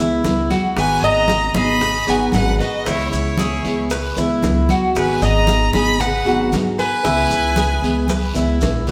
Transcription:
Already playing: C#2 B3 E4
0.00 E3 G#3 E4
0.23 C#2 E3 G#3 B3 E4, high bongo, low bongo, high conga, short guiro, maracas
0.50 F#4, high bongo, high conga, short guiro, maracas
0.76 G#1 D#3 F#3 B3 D#4 G#4 B4 G#5, high bongo, high conga, long guiro, maracas
1.02 G#1 D#5 A#5, high bongo, high conga
1.28 F#3 B3 D#4, high bongo, high conga, short guiro, maracas
1.54 G#1 F#3 B3 D#4 G#4 D#5 B5, high conga, low conga, short guiro, maracas
1.81 muted steel-string acoustic guitar stroke, high bongo, high conga, low conga, long guiro, maracas
2.06 G#1 F#3 B3 D#4 F#4 G#4 B4 G#5, high bongo, high conga, maracas
2.32 G#1 F#3 B3 D#4 B4 F#5, high bongo, low bongo, high conga, short guiro, maracas
2.36 G#4
2.59 F#4 B4 D#5, high bongo, high conga, short guiro, maracas
2.85 C#2 C#3 E3 G#3 B3 E4 C#5, high bongo, high conga, long guiro, maracas
3.11 C#2 E4 C#5, high bongo, high conga, maracas
3.38 E3 G#3 B3 E4 G#4, high bongo, high conga, short guiro, maracas
3.64 C#2 E3 G#3 B3 E4, high conga, short guiro, maracas
3.90 B4, muted steel-string acoustic guitar stroke, high bongo, high conga, long guiro, maracas
4.17 C#2 E3 G#3 B3 E4, high bongo, high conga, maracas
4.43 C#2 E3 G#3 B3 E4, high bongo, low bongo, high conga, short guiro, maracas
4.69 F#4, high bongo, high conga, short guiro, maracas
4.94 G#1 D#3 F#3 B3 D#4 G#4 B4, high bongo, high conga, long guiro, maracas
4.98 G#5
5.21 G#1 D#5 A#5, high bongo, high conga, maracas
5.47 F#3 B3 D#4 G#4, high bongo, high conga, short guiro, maracas
5.73 G#1 F#3 B3 D#4 G#4 D#5 B5, high conga, low conga, short guiro, maracas
5.98 B4 F#5, muted steel-string acoustic guitar stroke, high bongo, high conga, low conga, long guiro, maracas
6.25 G#1 F#3 B3 D#4 F#4 G#4, high bongo, high conga
6.52 G#2 F#3 B3 D#4 G#4, high bongo, low bongo, high conga, short guiro, maracas
6.78 B4 G#5, high bongo, high conga, short guiro, maracas
7.04 C#2 C#3 E3 G#3 B3 E4, high bongo, high conga, long guiro, maracas
7.30 C#2, high bongo, high conga, maracas
7.56 E3 G#3 B3 E4 G#4, high bongo, high conga, short guiro, maracas
7.82 C#2 E3 G#3 B3 E4, high conga, short guiro, maracas
8.08 B4, muted steel-string acoustic guitar stroke, high bongo, high conga, long guiro, maracas
8.34 C#2 E3 G#3 B3 E4, high bongo, maracas
8.59 A#1 E3 G#3 B3 E4, high bongo, low bongo, short guiro, maracas
8.87 low conga, short guiro, maracas

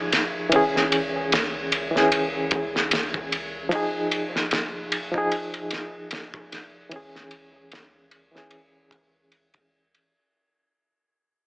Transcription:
Already playing: F1 F3 D#4 G#4
0.12 snare, ride
0.49 C#2 E3 C#4, kick, ride
0.56 G#4
0.76 snare
0.92 ride
1.32 snare, ride
1.72 ride
1.91 E3 C#4
1.96 G#4, snare
2.12 ride
2.51 kick, ride
2.76 snare
2.91 snare, ride
3.14 kick
3.32 ride
3.69 F1 F3 D#4, kick, ride
3.75 G#4
4.12 ride
4.36 snare
4.51 snare, ride
4.92 ride
5.11 F3 D#4, kick
5.18 G#4
5.32 ride
5.54 ride
5.71 snare, ride
6.11 snare, ride
6.34 kick
6.52 snare, ride
6.89 C#2 E3 C#4, kick, ride
6.96 G#4
7.16 snare
7.31 ride
7.72 snare, ride
8.11 ride
8.31 E3 C#4
8.36 G#4, snare
8.51 ride
8.91 kick, ride
9.32 ride
9.54 kick, ride
9.95 G#1, ride

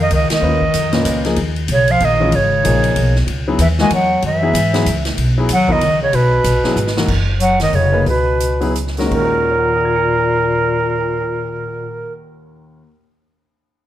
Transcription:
0.02 D#5
0.11 C#2 D#3 D#5, ride
0.30 D#3 D#5, muted upright bass stroke, snare, ride
0.42 D#2 A#3 C#4 F4 B4
0.61 kick
0.74 F2, hi-hat pedal, ride
0.93 A#2 C#4 F4 B4, snare, ride
1.05 C#2, hi-hat pedal, ride
1.25 F3 A#3 D#4 G#4, snare, ride
1.36 D#2, ride
1.56 ride
1.68 B1 C#3, hi-hat pedal, ride
1.72 C#5
1.88 F3 F5, ride
2.00 A#1 D#3, ride
2.05 D#5
2.20 E3 G#3 C#4 F4
2.32 G#1 C#3 C#5, ride
2.64 A#1 F3 A#3 D#4 G#4, hi-hat pedal, ride
2.84 ride
2.96 B1, ride
3.16 snare
3.27 C#2, ride
3.48 F#3 B3 E4 G#4
3.58 D#2 E3 E5, hi-hat pedal, ride
3.78 E3 G#3 A#3 D#4 F#4 G#5, snare
3.90 E2 F#3, ride
3.95 F#5
4.22 F#2 E3 E5, ride
4.43 F#3 B3 E4 G#4
4.54 G#2, hi-hat pedal, ride
4.73 F#3 B3 E4 G#4, snare, ride
4.86 C#2, hi-hat pedal, ride
5.05 snare, ride
5.17 B1, ride
5.38 F#3 B3 E4 G#4
5.49 D#2 F#3, hi-hat pedal, ride
5.53 F#5
5.68 D#3 F#3 B3 E4 A#4 D#5, kick
5.81 C#2, ride
6.02 C#3 C#5
6.13 B1 B2 B4, ride
6.44 A#1, hi-hat pedal, ride
6.64 F#3 B3 E4 G#4, muted upright bass stroke, snare
6.76 G#1, hi-hat pedal
6.87 snare
6.97 E3 A#3 D#4 F#4, snare
7.08 F#1, kick, crash
7.40 F#3 F#5, closed hi-hat
7.60 D#3 D#5, snare, open hi-hat
7.73 F1 C#3 C#5, open hi-hat
7.92 A#3 D#4 G#4 B4
8.06 C#2 B2 B4, open hi-hat
8.40 closed hi-hat
8.61 F#3 B3 E4 G#4, open hi-hat
8.75 closed hi-hat
8.87 snare
8.97 D#2 D#3 G#3 C#4 F#4 A#4, snare, open hi-hat
9.06 D#3
9.11 D#2 A#2 A#3 A#4, kick, crash
9.19 F#4
9.25 A#4
9.51 C#5
9.59 F#5
9.67 A#5
9.75 D#6
9.85 G#6
9.96 C#7

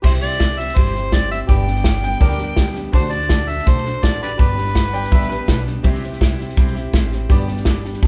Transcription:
0.02 C2 C3 G3 C4 E4 G4 C5 E5, kick, snare, crash
0.21 C4 E4 G4 D5, snare
0.32 snare
0.40 G3 C4 E4 G4, kick, snare, hi-hat pedal
0.58 C4 E4 G4 E5, snare
0.68 snare
0.76 G1 C3 G3 C4 E4 G4 C5, kick, snare
0.85 snare
0.95 C4 E4 G4, snare
1.12 G3 C4 E4 G4 D5, kick, snare, hi-hat pedal
1.31 C4 E4 G4 E5, snare
1.47 G1 G2 D3 G3 B3 D4 G4 B4 D5 G5, kick, snare
1.66 G3 B3 D4 G4, snare
1.76 snare
1.84 G3 B3 D4 G4, kick, snare, hi-hat pedal
2.02 G3 B3 D4 G4 G5, snare
2.11 snare
2.20 D2 G2 D3 G3 B3 D4 G4 A#4 D5, kick, snare
2.29 snare
2.38 B3 D4 G4, snare
2.42 G3
2.56 G3 B3 D4 G4, kick, snare, hi-hat pedal
2.74 G3 B3 D4 G4, snare
2.92 D2 D3 A3 D4 F#4 A4 C5 D5, kick, snare
3.11 D4 F#4 A4 D5, snare
3.20 snare
3.29 A3 D4 F#4 A4, kick, snare, hi-hat pedal
3.47 D4 F#4 A4 E5, snare
3.58 snare
3.66 B1 D3 A3 D4 F#4 A4 C5, kick, snare
3.77 snare
3.85 D4 F#4 A4, snare
4.02 A1 A3 D4 F#4 A4 D5, kick, snare, hi-hat pedal
4.21 D4 F#4 G4 A4 B4 D5, snare
4.37 G1 G2 D3 G3 B3 D4 G4 B4 D5, kick, snare
4.56 G3 B3 D4 G4, snare
4.66 snare
4.75 G3 B3 D4 G4, kick, snare, hi-hat pedal
4.89 F#5
4.93 G3 B3 D4 G4 D5 G5, snare
5.04 snare
5.11 A1 G2 D3 G3 B3 D4 G4 B4 E5, kick, snare
5.21 snare
5.29 G3 B3 D4 G4 B4, snare
5.46 B1 G3 B3 D4 G4, kick, snare, hi-hat pedal
5.65 G3 B3 D4 G4, snare
5.83 C2 C3 G3 C4 E4 G4 E5, kick, snare
5.94 snare
6.02 C4 E4 G4, snare
6.12 snare
6.20 C2 G3 C4 E4 G4, kick, snare, hi-hat pedal
6.38 C4 E4 G4, snare
6.49 snare
6.56 B1 C3 G3 C4 E4 G4, kick, snare
6.67 snare
6.74 C4 E4 G4, snare
6.93 A1 G3 C4 E4 G4, kick, snare, hi-hat pedal
7.11 C4 E4 G4, snare
7.29 G1 G2 D3 G3 B3 D4 G4 B4 D5, kick, snare
7.47 G3 B3 D4 G4, snare
7.57 snare
7.65 G3 B3 D4 G4, kick, snare, hi-hat pedal
7.84 G3 B3 D4 G4, snare
7.93 snare
8.02 A1 G2 D3 G3 B3 D4 G4, kick, snare

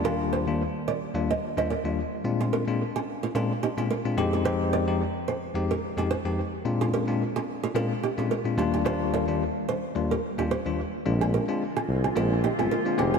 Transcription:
0.05 D#2 G3 A#3 D4 F4 G4 A#4
0.33 G#4 C5
0.47 D#2 G3 A#3 D4 F4
0.88 A#4 D5
1.15 D#2 G3 A#3 D4 F4
1.31 C5 D#5
1.57 D#2 G3 A#3 D4 F4 C5 D#5
1.70 A#4 D5
1.85 D#2 G3 A#3 D4 F4
2.24 A#2 G#3 C4 D4 F4
2.41 F4 G#4
2.53 G4 A#4
2.67 A#2 G#3 C4 D4 F4
2.96 F4 G#4
3.23 F4 G#4
3.35 A#2 G#3 C4 D4 F4 A#4
3.63 D#4 G4
3.77 A#2 G#3 C4 D4 F4 G#4
3.90 F4 A#4
4.05 A#2 G#3 C4 D4 F4
4.17 F2 G#3 C4 D#4 F4 G4 G#4
4.33 F4 G#4
4.45 F2 G#3 C4 D#4 G4 G#4 C5
4.73 A#4 D5
4.87 F2 G#3 C4 D#4 G4
5.28 G#4 C5
5.55 F2 G#3 C4 D#4 G4
5.71 G4 A#4
5.97 F2 G#3 C4 D#4 F4 G4 G#4
6.11 G#4 C5
6.25 F2 G#3 C4 D#4 G4
6.65 A#2 G#3 C4 D4 F4
6.81 F4 G#4
6.93 G4 A#4
7.07 A#2 G#3 C4 D4 F4
7.36 F4 G#4
7.63 F4 G#4
7.75 A#2 G#3 C4 D4 F4 A#4
8.03 D#4 G4
8.18 A#2 G#3 C4 D4 F4 G#4
8.31 F4 A#4
8.45 A#2 G#3 C4 D4 F4
8.57 D#2 G3 A#3 D4 D#4 F4 G4
8.74 D#4 G4
8.85 D#2 G3 A#3 D4 F4 G4 C5
9.14 A#4 D5
9.28 D#2 G3 A#3 D4 F4
9.69 G#4 C5
9.95 D#2 G3 A#3 D4 F4
10.11 G4 A#4
10.38 D#2 G3 A#3 D4 D#4 F4 G4
10.51 G4 C5
10.66 D#2 G3 A#3 D4 F4
11.05 A#1 D3 F3 G#3 A#3 C4 D4 F4
11.21 F4 G#4
11.34 G4 A#4
11.48 G#3 C4 D4 F4
11.77 F4 G#4
11.88 C2
12.04 F4 G#4
12.16 A#1 G#3 C4 D4 F4 A#4
12.44 D#4 G4
12.58 G1 G#3 C4 D4 F4 G#4
12.71 F4 A#4
12.86 G#3 C4 D4 F4
12.98 F1 G#3 C4 D#4 F4 G4 G#4
13.14 F4 G#4

